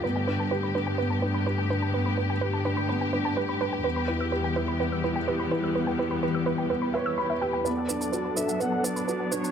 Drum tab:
SH |----------------|----------------|----------------|----------------|

SH |x-xxx-xxx-xxx-xx|